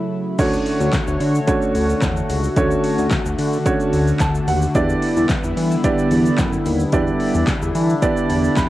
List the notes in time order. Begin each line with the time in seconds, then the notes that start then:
Already playing: C#3 F#3 A3 E4
0.39 D2 D3 A3 C#4 D4 F#4 C#5, kick, closed hi-hat, crash, shaker
0.53 shaker
0.66 open hi-hat, shaker
0.80 D2, shaker
0.93 kick, snare, clap, closed hi-hat, shaker
1.07 D2, shaker
1.20 D3, open hi-hat, shaker
1.35 shaker
1.47 A3 C#4 D4 F#4 C#5, kick, closed hi-hat, shaker
1.62 shaker
1.75 D2, open hi-hat, shaker
1.89 shaker
2.02 E2, kick, snare, clap, closed hi-hat, shaker
2.17 shaker
2.30 C#2, open hi-hat, shaker
2.44 shaker
2.56 D2 A3 C#4 D4 F#4 C#5, kick, closed hi-hat, shaker
2.71 shaker
2.84 open hi-hat, shaker
2.98 D2, shaker
3.11 kick, snare, clap, closed hi-hat, shaker
3.26 D2, shaker
3.39 D3, open hi-hat, shaker
3.53 shaker
3.66 A3 C#4 D4 F#4 C#5, kick, closed hi-hat, shaker
3.80 shaker
3.93 D2, open hi-hat, shaker
4.08 shaker
4.20 D2 A5, kick, snare, clap, closed hi-hat, shaker
4.35 shaker
4.48 D#2 F#5, open hi-hat, shaker
4.62 shaker
4.75 E2 G3 B3 D4 E4 G4 D5, kick, closed hi-hat, shaker
4.89 shaker
5.02 open hi-hat, shaker
5.17 E2, shaker
5.29 kick, snare, clap, closed hi-hat, shaker
5.44 E2, shaker
5.57 E3, open hi-hat, shaker
5.71 shaker
5.84 B3 D4 E4 G4 D5, kick, closed hi-hat, shaker
5.98 shaker
6.11 E2, open hi-hat, shaker
6.25 shaker
6.38 F#2, kick, snare, clap, closed hi-hat, shaker
6.53 shaker
6.66 D#2, open hi-hat, shaker
6.80 shaker
6.92 E2 B3 D4 E4 G4 D5, kick, closed hi-hat, shaker
7.07 shaker
7.20 open hi-hat, shaker
7.35 E2, shaker
7.47 kick, snare, clap, closed hi-hat, shaker
7.62 E2, shaker
7.75 E3, open hi-hat, shaker
7.90 shaker
8.02 B3 D4 E4 G4 D5, kick, closed hi-hat, shaker
8.17 shaker
8.30 E2, open hi-hat, shaker
8.44 shaker
8.57 E2 B5, kick, snare, clap, closed hi-hat, shaker